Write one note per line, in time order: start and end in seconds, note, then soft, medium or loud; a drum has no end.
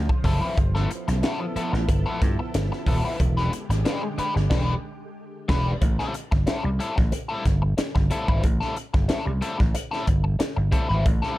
0.00 3.15 F3 medium
0.00 0.55 F4 medium
0.00 0.53 C5 medium
0.09 muted overdriven electric guitar stroke soft
0.09 kick medium
0.24 0.39 F#1 medium
0.24 0.42 F3 medium
0.24 0.41 C4 medium
0.24 0.41 E4 medium
0.24 0.41 A4 medium
0.24 kick medium
0.24 snare soft
0.24 open hi-hat medium
0.42 0.56 F3 soft
0.42 0.57 C4 medium
0.42 0.57 E4 medium
0.42 0.57 B4 medium
0.57 0.85 G1 loud
0.57 3.17 B3 medium
0.57 3.17 E4 medium
0.57 3.17 A4 medium
0.57 muted overdriven electric guitar stroke soft
0.57 kick medium
0.57 closed hi-hat medium
0.75 0.89 F3 medium
0.75 0.89 B3 medium
0.75 0.90 E4 medium
0.75 0.90 A4 medium
0.75 snare soft
0.91 muted overdriven electric guitar stroke soft
0.91 closed hi-hat medium
1.08 1.21 B1 medium
1.08 muted overdriven electric guitar stroke soft
1.08 snare soft
1.08 closed hi-hat medium
1.23 1.45 F3 medium
1.23 1.40 B3 medium
1.23 1.40 E4 medium
1.23 1.40 A4 medium
1.23 snare loud
1.23 closed hi-hat medium
1.41 muted overdriven electric guitar stroke soft
1.56 1.73 F3 medium
1.56 1.73 B3 medium
1.56 1.72 E4 medium
1.56 1.72 A4 medium
1.56 muted slap bass stroke soft
1.56 closed hi-hat medium
1.73 1.86 A1 medium
1.73 muted overdriven electric guitar stroke medium
1.73 snare soft
1.88 2.03 G1 medium
1.88 muted overdriven electric guitar stroke soft
1.88 kick medium
1.88 closed hi-hat medium
2.06 2.20 F3 medium
2.06 2.21 B3 medium
2.06 2.21 E4 medium
2.06 2.21 A4 medium
2.21 2.36 G2 loud
2.21 muted overdriven electric guitar stroke soft
2.21 kick medium
2.21 snare soft
2.21 closed hi-hat medium
2.39 muted overdriven electric guitar stroke soft
2.54 2.69 G1 medium
2.54 muted overdriven electric guitar stroke soft
2.54 snare loud
2.54 closed hi-hat loud
2.72 muted overdriven electric guitar stroke medium
2.72 snare soft
2.86 3.01 D#1 medium
2.86 3.04 F3 medium
2.86 3.04 B3 medium
2.86 3.04 E4 medium
2.86 3.04 A4 medium
2.86 kick medium
2.86 open hi-hat medium
3.05 3.19 F3 soft
3.05 3.19 B3 soft
3.05 3.20 E4 medium
3.05 3.19 B4 medium
3.19 3.47 E1 loud
3.19 5.79 D3 medium
3.19 5.79 G#3 medium
3.19 5.79 G4 medium
3.19 muted overdriven electric guitar stroke soft
3.19 kick loud
3.19 closed hi-hat medium
3.37 3.51 G#3 medium
3.37 3.52 D4 medium
3.37 3.52 G4 medium
3.37 3.52 B4 medium
3.37 snare soft
3.53 muted overdriven electric guitar stroke soft
3.53 closed hi-hat medium
3.69 3.82 G#1 medium
3.69 muted overdriven electric guitar stroke medium
3.69 snare soft
3.69 closed hi-hat medium
3.85 4.07 G#3 medium
3.85 4.02 D4 medium
3.85 4.02 G4 loud
3.85 4.02 B4 loud
3.85 snare loud
3.85 closed hi-hat medium
4.03 muted overdriven electric guitar stroke soft
4.18 4.35 G#3 medium
4.18 4.35 D4 medium
4.18 4.35 G4 medium
4.18 4.34 B4 medium
4.18 muted slap bass stroke soft
4.18 closed hi-hat medium
4.35 4.48 G1 medium
4.35 muted overdriven electric guitar stroke soft
4.35 snare soft
4.50 4.73 E1 loud
4.50 4.73 G#3 medium
4.50 4.73 D4 medium
4.50 4.73 G4 loud
4.50 4.73 B4 medium
4.50 kick loud
4.50 snare loud
4.50 crash medium
5.48 5.72 E1 loud
5.48 5.71 G#3 medium
5.48 5.71 D4 loud
5.48 5.72 G4 loud
5.48 5.72 B4 loud
5.48 kick medium
5.48 snare loud
5.48 crash medium
5.81 5.96 A1 medium
5.81 muted overdriven electric guitar stroke soft
5.81 kick loud
5.81 closed hi-hat medium
5.99 6.13 G3 medium
5.99 6.13 C4 medium
5.99 6.14 E4 medium
5.99 6.14 A4 medium
5.99 snare soft
6.14 muted overdriven electric guitar stroke soft
6.14 closed hi-hat medium
6.31 6.45 G1 medium
6.31 muted overdriven electric guitar stroke medium
6.31 kick loud
6.31 snare soft
6.47 6.69 G3 medium
6.47 6.63 C4 medium
6.47 6.63 E4 medium
6.47 6.63 A4 medium
6.47 muted slap bass stroke soft
6.47 snare loud
6.47 closed hi-hat medium
6.64 6.77 C2 loud
6.64 muted overdriven electric guitar stroke medium
6.79 6.97 G3 medium
6.79 6.96 C4 medium
6.79 6.96 E4 medium
6.79 6.96 A4 medium
6.79 closed hi-hat medium
6.97 7.10 A1 medium
6.97 muted overdriven electric guitar stroke medium
6.97 kick medium
6.97 snare soft
7.12 muted overdriven electric guitar stroke soft
7.12 closed hi-hat loud
7.29 7.44 G3 medium
7.29 7.44 C4 medium
7.29 7.44 E4 medium
7.29 7.44 A4 medium
7.45 7.73 G1 medium
7.45 muted overdriven electric guitar stroke soft
7.45 kick medium
7.45 snare soft
7.45 closed hi-hat medium
7.62 muted overdriven electric guitar stroke soft
7.78 muted overdriven electric guitar stroke soft
7.78 snare loud
7.78 closed hi-hat loud
7.95 8.09 G1 loud
7.95 muted overdriven electric guitar stroke medium
7.95 kick medium
7.95 snare soft
8.10 8.28 G3 medium
8.10 8.28 C4 medium
8.10 8.27 E4 medium
8.10 8.28 A4 medium
8.10 closed hi-hat medium
8.28 8.41 G#1 medium
8.28 8.43 G3 soft
8.28 8.43 C4 medium
8.28 8.43 E4 medium
8.28 8.44 B4 medium
8.28 kick medium
8.44 8.58 A1 loud
8.44 muted overdriven electric guitar stroke soft
8.44 kick loud
8.44 closed hi-hat medium
8.61 8.75 G3 medium
8.61 8.76 C4 medium
8.61 8.76 E4 medium
8.61 8.76 A4 medium
8.61 snare soft
8.76 muted overdriven electric guitar stroke soft
8.76 closed hi-hat medium
8.94 9.07 G1 medium
8.94 muted overdriven electric guitar stroke medium
8.94 kick medium
8.94 snare soft
9.09 9.31 G3 medium
9.09 9.26 C4 medium
9.09 9.25 E4 medium
9.09 9.25 A4 medium
9.09 muted slap bass stroke soft
9.09 snare loud
9.09 closed hi-hat medium
9.26 9.39 C2 loud
9.26 muted overdriven electric guitar stroke soft
9.41 9.59 G3 medium
9.41 9.58 C4 medium
9.41 9.58 E4 medium
9.41 9.58 A4 medium
9.41 closed hi-hat medium
9.59 9.73 A1 medium
9.59 muted overdriven electric guitar stroke medium
9.59 kick medium
9.59 snare soft
9.74 muted overdriven electric guitar stroke soft
9.74 closed hi-hat loud
9.91 10.05 G3 medium
9.91 10.06 C4 medium
9.91 10.06 E4 medium
9.91 10.06 A4 medium
9.91 snare soft
10.07 10.35 G1 medium
10.07 muted overdriven electric guitar stroke soft
10.07 kick loud
10.07 closed hi-hat medium
10.24 muted overdriven electric guitar stroke soft
10.39 muted overdriven electric guitar stroke medium
10.39 snare loud
10.39 closed hi-hat loud
10.56 10.70 G1 loud
10.56 muted overdriven electric guitar stroke soft
10.72 10.89 G3 medium
10.72 10.89 C4 medium
10.72 10.89 E4 medium
10.72 10.89 A4 medium
10.72 kick medium
10.72 closed hi-hat medium
10.89 11.03 G#1 loud
10.89 11.04 G3 medium
10.89 11.04 C4 medium
10.89 11.05 E4 medium
10.89 11.05 B4 medium
11.05 11.20 A1 medium
11.05 muted overdriven electric guitar stroke soft
11.05 kick loud
11.05 closed hi-hat medium
11.22 11.36 G3 medium
11.22 11.37 C4 medium
11.22 11.37 E4 medium
11.22 11.37 A4 medium
11.22 snare soft